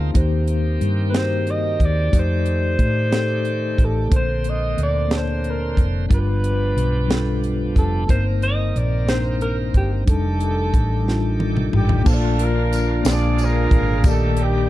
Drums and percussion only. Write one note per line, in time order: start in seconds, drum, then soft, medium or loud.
0.15 kick loud
0.15 closed hi-hat medium
0.48 closed hi-hat soft
0.81 closed hi-hat soft
1.14 snare medium
1.14 closed hi-hat medium
1.47 closed hi-hat soft
1.80 kick medium
1.80 closed hi-hat soft
2.13 kick medium
2.13 closed hi-hat medium
2.46 closed hi-hat soft
2.79 kick medium
2.79 closed hi-hat soft
3.12 snare medium
3.12 closed hi-hat medium
3.45 closed hi-hat soft
3.78 kick medium
3.78 closed hi-hat soft
4.12 kick loud
4.12 closed hi-hat medium
4.44 closed hi-hat soft
4.78 closed hi-hat soft
5.11 snare medium
5.11 closed hi-hat medium
5.44 closed hi-hat soft
5.77 kick medium
5.77 closed hi-hat soft
6.11 kick loud
6.11 closed hi-hat medium
6.44 closed hi-hat soft
6.78 closed hi-hat soft
7.10 snare medium
7.10 closed hi-hat medium
7.44 closed hi-hat soft
7.76 kick medium
7.76 closed hi-hat soft
8.09 kick medium
8.09 closed hi-hat medium
8.42 closed hi-hat soft
8.76 closed hi-hat soft
9.08 snare medium
9.08 closed hi-hat medium
9.41 closed hi-hat soft
9.74 kick medium
9.74 closed hi-hat soft
10.08 kick medium
10.08 closed hi-hat medium
10.40 closed hi-hat soft
10.74 kick medium
10.74 closed hi-hat soft
11.08 snare soft
11.40 high tom medium
11.57 mid tom medium
11.73 mid tom medium
11.89 floor tom medium
12.06 kick loud
12.06 crash medium
12.06 tambourine medium
12.39 closed hi-hat medium
12.73 closed hi-hat medium
12.73 tambourine soft
13.05 snare loud
13.05 closed hi-hat medium
13.05 tambourine medium
13.38 closed hi-hat soft
13.38 tambourine soft
13.71 kick medium
13.71 closed hi-hat soft
14.04 kick loud
14.04 closed hi-hat medium
14.04 tambourine medium
14.37 closed hi-hat medium